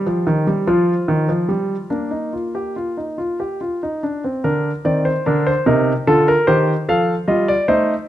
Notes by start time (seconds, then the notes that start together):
Already playing: G4 C5
0.06 F3
0.27 D#3
0.47 G3
0.67 F3 F4
1.08 D#3
1.29 F3
1.49 G3
1.90 A#3 D4 A#4
2.11 D#4
2.33 F4
2.55 G4
2.76 F4
2.97 D#4
3.18 F4
3.40 G4
3.61 F4
3.83 D#4
4.03 D4
4.24 C4
4.44 D3 D4 A#4
4.85 D#3 C4 D5
5.05 C5
5.26 D3 D4 A#4
5.47 C5
5.66 C3 D#4 A#4
6.07 D3 F4 A4
6.28 A#4
6.47 D#3 G4 C5
6.89 F3 A4 F5
7.28 G3 F4 D#5
7.48 D5
7.68 A3 D#4 C5